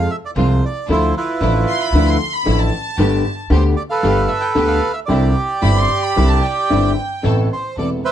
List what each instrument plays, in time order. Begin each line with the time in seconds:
Already playing: bandoneon F5
0.11 bandoneon E5
0.26 bandoneon D5
0.36 upright bass C2, upright piano C2 C3 F3 G#3 F4, string section G#3 C4 F4, bandoneon C5
0.65 bandoneon D5
0.88 upright bass D2, upright piano D2 D3 F3 A3 E4, string section F3 D4 E4, bandoneon E4 F4 C5
1.17 bandoneon E4 F4 B4
1.41 upright bass A1, upright piano A1 A2 D3 F3 A3 E4, string section F3 D4 E4
1.68 violin section C6
1.81 violin section B5
1.93 upright bass D2, upright piano D2 D3 F3 A3 E4, string section F3 D4 E4
2.07 violin section C6
2.33 violin section B5
2.46 upright piano A1 A2 D3 F3 A3 E4, upright bass A1, string section F3 D4 E4
2.58 violin section A5
2.98 upright bass G1, upright piano G1 G2 D3 A3 B3 G4, string section A3 B3 G4
3.50 upright piano D2 D3 A3 B3 G4, upright bass D2, string section A3 B3 G4, bandoneon C5
3.76 bandoneon D5
3.90 bandoneon A4 B4 F5
4.03 upright piano G1 G2 D3 A3 B3 G4, upright bass G1, string section A3 B3 G4
4.28 bandoneon E5
4.41 bandoneon G5
4.55 upright piano D2 D3 A3 B3 G4, upright bass D2, string section A3 B3 G4
4.67 bandoneon F5
4.93 bandoneon E5
5.06 upright piano C2 C3 D3 G3 C4 E4, upright bass C2, string section C4 D4 E4, bandoneon G4 D5
5.62 upright piano G1 G2 D3 G3 C4 E4, upright bass G1, string section C4 D4 E4, violin section B5
5.77 violin section C6
6.02 violin section B5
6.16 upright bass C2, upright piano C2 C3 D3 G3 C4 E4, string section C4 D4 E4
6.28 violin section A5
6.43 violin section G5
6.70 upright piano G1 G2 D3 G3 C4 E4, upright bass G1, string section C4 D4 E4
7.23 upright piano A1 A2 C3 A3 B3 E4, upright bass A1, string section B3 C4 A4
7.53 bandoneon C5
7.76 upright bass E1, upright piano E1 E2 C3 A3 B3 E4, string section B3 C4 A4, bandoneon D5
8.05 bandoneon B4 C5 E5